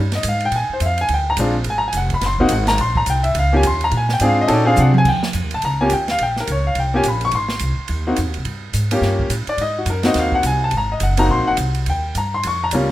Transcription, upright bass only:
0.00 0.23 G2 medium
0.24 0.51 G#2 medium
0.51 0.68 A#2 medium
0.70 muted upright bass stroke soft
0.80 1.08 F2 medium
1.09 1.36 D2 medium
1.37 1.65 A#1 loud
1.65 1.93 G#1 medium
1.93 2.20 F1 medium
2.21 2.49 F#1 medium
2.50 2.78 G#1 loud
2.79 3.06 A#1 medium
3.07 3.34 C2 medium
3.35 3.63 C#2 loud
3.63 3.91 D#2 loud
3.92 4.19 A#2 medium
4.20 4.48 G#2 medium
4.49 4.76 A#2 medium
4.78 5.05 C3 loud
5.06 5.33 D#2 medium
5.34 5.44 F2 medium
5.44 5.53 D#2 soft
5.54 5.62 C#2 medium
5.64 5.90 C#2 medium
5.92 6.19 D#2 medium
6.20 6.47 A#1 medium
6.48 6.75 C#2 medium
6.76 7.03 C2 medium
7.05 7.32 A#1 medium
7.33 7.60 G#1 medium
7.61 7.77 C2 medium
7.78 muted upright bass stroke soft
7.89 8.17 D#2 medium
8.18 8.26 F2 medium
8.27 8.36 D#2 medium
8.37 8.44 C2 medium
8.45 8.73 G2 medium
8.74 9.01 G#2 medium
9.01 9.29 G2 medium
9.30 9.47 A2 medium
9.47 muted upright bass stroke soft
9.57 9.85 G#2 medium
9.86 10.14 F#2 medium
10.15 10.42 D#2 medium
10.43 10.71 C2 medium
10.72 11.00 G#1 medium
11.01 11.28 F#1 medium
11.29 11.41 A#1 medium
11.39 11.48 G#1 medium
11.49 11.57 F#1 medium
11.58 11.86 C2 medium
11.87 12.14 D#2 medium
12.15 12.43 G2 medium
12.45 12.72 F2 medium
12.72 12.91 C#2 medium

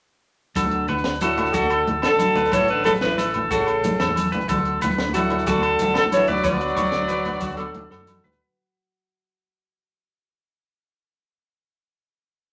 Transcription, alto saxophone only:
1.22 1.55 F#4 medium
1.53 1.86 A4 medium
2.05 2.55 A4 medium
2.53 2.69 C#5 loud
2.70 2.84 B4 medium
2.85 2.92 A4 medium
3.02 3.32 B4 medium
3.52 4.12 A4 medium
5.14 5.49 F#4 medium
5.48 5.96 A4 medium
5.97 6.04 A4 medium
6.13 6.30 C#5 medium
6.28 6.44 D5 loud
6.45 8.04 D5 loud

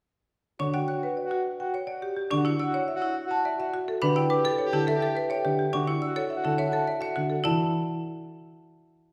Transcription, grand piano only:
0.60 0.78 D3 medium
2.32 2.50 D3 medium
4.02 4.21 D3 medium
4.73 4.92 D3 medium
5.45 5.64 D3 medium
5.74 5.92 D3 medium
6.45 6.64 D3 medium
7.17 7.35 D3 medium
7.46 7.72 E3 medium

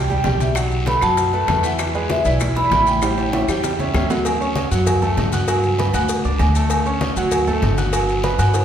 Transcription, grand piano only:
0.10 0.22 G3 medium
0.10 0.23 G4 medium
0.10 0.23 G5 medium
0.25 0.51 G3 medium
0.25 0.51 G4 medium
0.25 0.51 G5 medium
0.56 0.81 F#3 medium
0.56 0.81 F#4 medium
0.56 0.82 F#5 medium
0.87 0.99 A3 medium
0.87 0.99 A4 medium
0.87 1.00 B4 medium
1.02 1.27 F#3 medium
1.02 1.27 F#4 medium
1.02 1.28 F#5 medium
1.33 1.46 A3 medium
1.33 1.46 A4 medium
1.33 1.46 B4 medium
1.49 1.61 A3 medium
1.49 1.61 A4 medium
1.49 1.62 B4 medium
1.63 1.89 E3 medium
1.63 1.89 E4 medium
1.63 1.89 E5 medium
1.95 2.20 G#3 medium
1.95 2.20 G#4 medium
1.95 2.20 B4 medium
2.25 2.51 E3 medium
2.25 2.51 E4 medium
2.25 2.51 E5 medium
2.56 2.69 E3 medium
2.56 2.69 E4 medium
2.56 2.69 E5 medium
2.72 2.97 E3 medium
2.72 2.97 E4 medium
2.72 2.97 E5 medium
3.02 3.28 G3 medium
3.02 3.28 G4 medium
3.02 3.28 G5 medium
3.33 3.46 C#4 medium
3.33 3.46 C#5 medium
3.33 3.46 E5 medium
3.49 3.74 G3 medium
3.49 3.74 G4 medium
3.49 3.74 G5 medium
3.79 3.92 C#4 medium
3.79 3.92 C#5 medium
3.79 3.92 E5 medium
3.94 4.07 C#4 medium
3.94 4.07 C#5 medium
3.94 4.07 E5 medium
4.10 4.22 F#3 medium
4.10 4.23 F#4 medium
4.10 4.23 F#5 medium
4.40 4.66 C#4 medium
4.40 4.66 C#5 medium
4.40 4.66 C#6 medium
4.71 4.96 F#3 medium
4.71 4.97 F#4 medium
4.71 4.97 F#5 medium
5.02 5.27 A3 medium
5.02 5.27 A4 medium
5.02 5.27 A5 medium
5.33 5.46 F#4 medium
5.33 5.46 F#5 medium
5.33 5.46 F#6 medium
5.48 5.73 F#3 medium
5.48 5.73 F#4 medium
5.48 5.74 F#5 medium
5.78 5.91 B3 medium
5.78 5.91 B4 medium
5.78 5.92 B5 medium
5.94 6.19 F#4 medium
5.94 6.19 F#5 medium
5.94 6.20 F#6 medium
6.25 6.50 D4 medium
6.25 6.50 D5 medium
6.25 6.50 D6 medium
6.56 6.81 A3 medium
6.56 6.81 A4 medium
6.56 6.81 A5 medium
6.86 7.11 C#4 medium
6.86 7.11 C#5 medium
6.86 7.12 C#6 medium
7.17 7.42 F#3 loud
7.17 7.42 F#4 medium
7.17 7.42 F#5 loud
7.47 7.72 A3 medium
7.47 7.73 A4 medium
7.47 7.73 A5 medium
7.78 7.90 F#4 medium
7.78 7.91 F#5 medium
7.78 7.91 F#6 medium
7.93 8.18 F#3 medium
7.93 8.18 F#4 medium
7.93 8.19 F#5 medium
8.24 8.36 B3 medium
8.24 8.36 B4 medium
8.24 8.37 B5 medium
8.39 8.64 F#4 medium
8.39 8.64 F#5 medium
8.39 8.64 F#6 medium

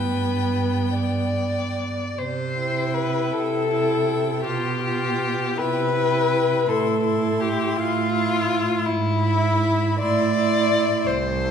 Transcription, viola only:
0.00 1.98 B3 soft
2.58 3.68 E4 soft
3.70 4.44 E4 soft
4.44 4.82 F4 soft
4.83 5.57 F4 soft
5.58 5.94 E4 soft
5.95 6.66 E4 soft
6.67 7.02 E4 soft
7.04 8.11 E4 soft
8.12 8.84 E4 soft
9.24 9.98 E4 soft
10.00 10.35 E4 soft
10.37 11.06 E4 soft
11.43 11.51 E4 soft

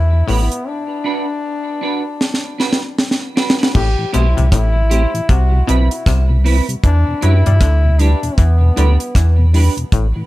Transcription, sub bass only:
0.00 0.23 E2 medium
0.29 0.49 A1 medium
3.75 3.96 A1 loud
4.15 4.35 B1 medium
4.39 4.51 C2 medium
4.52 5.06 A1 loud
5.30 5.63 C2 loud
5.70 5.89 B1 medium
6.07 6.61 C2 medium
6.84 7.04 E2 loud
7.23 7.43 F#2 loud
7.47 7.59 G2 medium
7.61 8.15 D2 loud
8.38 8.72 E2 medium
8.78 8.98 D2 loud
9.16 9.69 E2 medium
9.93 10.13 A1 loud

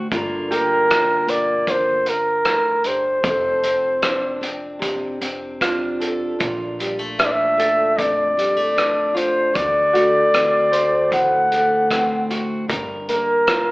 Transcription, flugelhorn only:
0.50 1.31 A#4 medium
1.30 1.72 D5 medium
1.70 2.11 C5 medium
2.09 2.88 A#4 medium
2.87 4.43 C5 medium
7.19 7.26 E5 medium
7.25 7.33 D5 medium
7.32 7.99 E5 medium
7.97 9.19 D5 medium
9.17 9.57 C5 medium
9.55 11.12 D5 medium
11.14 12.27 F#5 medium
13.09 13.71 A#4 medium

